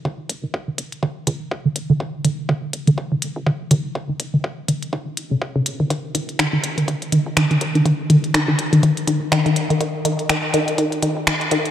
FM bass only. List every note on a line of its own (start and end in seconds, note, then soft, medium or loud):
0.05 0.16 D#1 loud
0.29 0.41 D#1 loud
0.54 0.65 D#1 medium
0.78 0.89 D#1 medium
1.27 1.38 C#2 medium
1.76 1.87 D#1 medium
2.00 2.11 D#1 loud
2.25 2.36 D#1 loud
2.49 2.60 D#1 medium
2.73 2.85 D#1 medium
3.12 3.20 D#1 medium
3.36 3.62 A#1 medium
3.61 3.69 D#1 medium
3.71 3.82 D#2 medium
3.95 4.06 D#1 loud
4.20 4.31 D#1 loud
4.44 4.55 D#1 medium
4.68 4.80 D#1 medium
5.56 5.64 D#1 medium
5.80 5.88 D#1 medium
5.90 6.02 D#1 loud
6.15 6.26 D#1 loud
6.64 6.75 D#1 loud
7.02 7.10 D#1 medium
7.26 7.52 A#1 medium
7.61 7.72 D#2 medium
8.59 8.70 D#1 medium
9.07 9.19 C#2 loud
9.56 9.67 D#1 medium
9.81 9.92 D#1 loud
10.05 10.16 D#1 loud
10.92 11.00 D#1 medium
11.17 11.43 A#1 medium
11.41 11.49 D#1 medium
11.51 11.63 D#2 medium